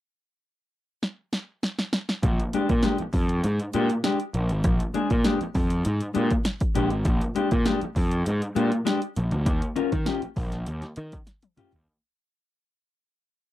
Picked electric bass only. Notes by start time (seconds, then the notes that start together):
2.23 A#1
2.55 muted picked electric bass stroke
2.70 A#2
3.00 muted picked electric bass stroke
3.14 F2
3.44 G#2
3.75 A#2
4.34 A#1
4.51 G#1
4.65 A#1
4.95 muted picked electric bass stroke
5.11 A#2
5.41 muted picked electric bass stroke
5.55 F2
5.86 G#2
6.16 A#2
6.76 A#1
6.92 G#1
7.06 A#1
7.37 muted picked electric bass stroke
7.52 A#2
7.83 muted picked electric bass stroke
7.96 F2
8.27 G#2
8.56 A#2
9.17 A#1
9.32 D2
9.46 D#2
9.77 muted picked electric bass stroke
9.92 D#3
10.23 muted picked electric bass stroke
10.37 A#1
10.68 D#2
10.97 D#3
11.58 muted picked electric bass stroke
11.74 D#2